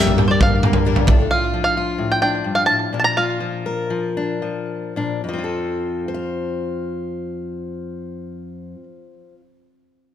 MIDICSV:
0, 0, Header, 1, 6, 480
1, 0, Start_track
1, 0, Key_signature, -1, "major"
1, 0, Tempo, 453515
1, 1387, Time_signature, 4, 2, 24, 8
1, 2840, Tempo, 490597
1, 4280, Tempo, 538600
1, 5240, Tempo, 563910
1, 9425, End_track
2, 0, Start_track
2, 0, Title_t, "Five-string banjo"
2, 0, Program_c, 0, 105
2, 0, Note_on_c, 0, 76, 70
2, 293, Note_on_c, 0, 72, 48
2, 305, Note_off_c, 0, 76, 0
2, 320, Note_off_c, 0, 72, 0
2, 328, Note_on_c, 0, 74, 63
2, 445, Note_off_c, 0, 74, 0
2, 450, Note_on_c, 0, 77, 73
2, 1114, Note_off_c, 0, 77, 0
2, 1384, Note_on_c, 0, 77, 69
2, 1724, Note_off_c, 0, 77, 0
2, 1737, Note_on_c, 0, 77, 66
2, 2235, Note_off_c, 0, 77, 0
2, 2239, Note_on_c, 0, 79, 66
2, 2336, Note_off_c, 0, 79, 0
2, 2349, Note_on_c, 0, 79, 77
2, 2696, Note_off_c, 0, 79, 0
2, 2700, Note_on_c, 0, 77, 65
2, 2812, Note_off_c, 0, 77, 0
2, 2816, Note_on_c, 0, 81, 74
2, 3134, Note_off_c, 0, 81, 0
2, 3145, Note_on_c, 0, 81, 58
2, 3182, Note_off_c, 0, 81, 0
2, 3192, Note_on_c, 0, 82, 72
2, 3311, Note_off_c, 0, 82, 0
2, 3316, Note_on_c, 0, 77, 62
2, 4719, Note_off_c, 0, 77, 0
2, 9425, End_track
3, 0, Start_track
3, 0, Title_t, "Twelve-string acoustic guitar"
3, 0, Program_c, 1, 25
3, 0, Note_on_c, 1, 43, 61
3, 0, Note_on_c, 1, 50, 65
3, 0, Note_on_c, 1, 55, 65
3, 0, Note_on_c, 1, 58, 75
3, 0, Note_on_c, 1, 62, 67
3, 0, Note_on_c, 1, 70, 72
3, 171, Note_off_c, 1, 55, 0
3, 183, Note_on_c, 1, 55, 50
3, 186, Note_off_c, 1, 58, 0
3, 192, Note_off_c, 1, 62, 0
3, 197, Note_off_c, 1, 43, 0
3, 199, Note_off_c, 1, 50, 0
3, 199, Note_on_c, 1, 58, 52
3, 205, Note_on_c, 1, 62, 53
3, 206, Note_off_c, 1, 70, 0
3, 219, Note_on_c, 1, 70, 59
3, 296, Note_off_c, 1, 70, 0
3, 306, Note_off_c, 1, 62, 0
3, 309, Note_off_c, 1, 55, 0
3, 309, Note_on_c, 1, 70, 42
3, 313, Note_off_c, 1, 58, 0
3, 318, Note_on_c, 1, 62, 40
3, 325, Note_on_c, 1, 58, 41
3, 332, Note_on_c, 1, 55, 36
3, 646, Note_off_c, 1, 55, 0
3, 659, Note_off_c, 1, 58, 0
3, 659, Note_on_c, 1, 55, 48
3, 666, Note_off_c, 1, 62, 0
3, 669, Note_off_c, 1, 70, 0
3, 671, Note_on_c, 1, 58, 45
3, 679, Note_on_c, 1, 62, 54
3, 688, Note_on_c, 1, 70, 57
3, 900, Note_on_c, 1, 43, 54
3, 902, Note_off_c, 1, 58, 0
3, 904, Note_off_c, 1, 55, 0
3, 907, Note_off_c, 1, 62, 0
3, 910, Note_off_c, 1, 70, 0
3, 912, Note_on_c, 1, 50, 65
3, 915, Note_on_c, 1, 58, 69
3, 916, Note_on_c, 1, 55, 61
3, 920, Note_on_c, 1, 62, 66
3, 922, Note_on_c, 1, 70, 69
3, 1130, Note_off_c, 1, 55, 0
3, 1135, Note_on_c, 1, 57, 55
3, 1138, Note_off_c, 1, 62, 0
3, 1143, Note_off_c, 1, 43, 0
3, 1147, Note_off_c, 1, 58, 0
3, 1149, Note_off_c, 1, 50, 0
3, 1151, Note_on_c, 1, 62, 59
3, 1155, Note_off_c, 1, 70, 0
3, 1159, Note_on_c, 1, 65, 62
3, 1165, Note_on_c, 1, 69, 55
3, 1241, Note_off_c, 1, 69, 0
3, 1253, Note_on_c, 1, 69, 43
3, 1255, Note_off_c, 1, 65, 0
3, 1261, Note_off_c, 1, 57, 0
3, 1265, Note_off_c, 1, 62, 0
3, 1268, Note_on_c, 1, 65, 41
3, 1278, Note_on_c, 1, 62, 40
3, 1284, Note_on_c, 1, 57, 41
3, 1380, Note_off_c, 1, 69, 0
3, 1387, Note_off_c, 1, 65, 0
3, 1392, Note_off_c, 1, 62, 0
3, 1395, Note_off_c, 1, 57, 0
3, 9425, End_track
4, 0, Start_track
4, 0, Title_t, "Steel-string acoustic guitar"
4, 0, Program_c, 2, 25
4, 0, Note_on_c, 2, 43, 64
4, 0, Note_on_c, 2, 55, 55
4, 0, Note_on_c, 2, 58, 54
4, 0, Note_on_c, 2, 62, 52
4, 0, Note_on_c, 2, 67, 57
4, 190, Note_off_c, 2, 67, 0
4, 203, Note_on_c, 2, 67, 56
4, 431, Note_on_c, 2, 50, 52
4, 677, Note_off_c, 2, 58, 0
4, 690, Note_on_c, 2, 58, 51
4, 903, Note_off_c, 2, 55, 0
4, 916, Note_on_c, 2, 55, 58
4, 1118, Note_off_c, 2, 50, 0
4, 1120, Note_off_c, 2, 43, 0
4, 1123, Note_off_c, 2, 55, 0
4, 1123, Note_off_c, 2, 67, 0
4, 1155, Note_on_c, 2, 45, 60
4, 1157, Note_off_c, 2, 58, 0
4, 1163, Note_off_c, 2, 62, 0
4, 1163, Note_on_c, 2, 62, 49
4, 1403, Note_on_c, 2, 65, 57
4, 1625, Note_on_c, 2, 53, 50
4, 1871, Note_off_c, 2, 65, 0
4, 1876, Note_on_c, 2, 65, 56
4, 2086, Note_off_c, 2, 45, 0
4, 2099, Note_on_c, 2, 45, 54
4, 2349, Note_off_c, 2, 62, 0
4, 2353, Note_on_c, 2, 62, 50
4, 2582, Note_off_c, 2, 45, 0
4, 2586, Note_on_c, 2, 43, 53
4, 2837, Note_off_c, 2, 43, 0
4, 2847, Note_on_c, 2, 45, 52
4, 3046, Note_off_c, 2, 62, 0
4, 3074, Note_off_c, 2, 45, 0
4, 3077, Note_on_c, 2, 46, 54
4, 3090, Note_on_c, 2, 62, 44
4, 3311, Note_off_c, 2, 65, 0
4, 3322, Note_on_c, 2, 65, 47
4, 3533, Note_off_c, 2, 53, 0
4, 3545, Note_on_c, 2, 53, 51
4, 3794, Note_on_c, 2, 70, 53
4, 4021, Note_off_c, 2, 53, 0
4, 4033, Note_on_c, 2, 53, 48
4, 4282, Note_off_c, 2, 62, 0
4, 4293, Note_on_c, 2, 62, 45
4, 4505, Note_off_c, 2, 53, 0
4, 4516, Note_on_c, 2, 53, 46
4, 4966, Note_off_c, 2, 46, 0
4, 4967, Note_off_c, 2, 70, 0
4, 4969, Note_off_c, 2, 62, 0
4, 4971, Note_off_c, 2, 65, 0
4, 4999, Note_on_c, 2, 46, 51
4, 5007, Note_on_c, 2, 62, 42
4, 5214, Note_off_c, 2, 46, 0
4, 5218, Note_off_c, 2, 62, 0
4, 5245, Note_on_c, 2, 41, 49
4, 5275, Note_off_c, 2, 53, 0
4, 5286, Note_on_c, 2, 53, 47
4, 5326, Note_on_c, 2, 60, 44
4, 5369, Note_on_c, 2, 65, 39
4, 5414, Note_on_c, 2, 69, 43
4, 5960, Note_off_c, 2, 65, 0
4, 5963, Note_on_c, 2, 72, 52
4, 6013, Note_off_c, 2, 69, 0
4, 6016, Note_on_c, 2, 77, 52
4, 8224, Note_off_c, 2, 41, 0
4, 8265, Note_off_c, 2, 53, 0
4, 8306, Note_off_c, 2, 60, 0
4, 8738, Note_off_c, 2, 72, 0
4, 8791, Note_off_c, 2, 77, 0
4, 9425, End_track
5, 0, Start_track
5, 0, Title_t, "Fingered electric bass"
5, 0, Program_c, 3, 33
5, 0, Note_on_c, 3, 43, 67
5, 1116, Note_off_c, 3, 43, 0
5, 9425, End_track
6, 0, Start_track
6, 0, Title_t, "Drums"
6, 76, Note_on_c, 9, 43, 65
6, 182, Note_off_c, 9, 43, 0
6, 192, Note_on_c, 9, 47, 65
6, 298, Note_off_c, 9, 47, 0
6, 430, Note_on_c, 9, 43, 67
6, 431, Note_on_c, 9, 36, 86
6, 536, Note_off_c, 9, 43, 0
6, 537, Note_off_c, 9, 36, 0
6, 668, Note_on_c, 9, 47, 66
6, 774, Note_off_c, 9, 47, 0
6, 775, Note_on_c, 9, 43, 69
6, 881, Note_off_c, 9, 43, 0
6, 1018, Note_on_c, 9, 43, 68
6, 1123, Note_off_c, 9, 43, 0
6, 1134, Note_on_c, 9, 43, 74
6, 1142, Note_on_c, 9, 36, 90
6, 1240, Note_off_c, 9, 43, 0
6, 1248, Note_off_c, 9, 36, 0
6, 9425, End_track
0, 0, End_of_file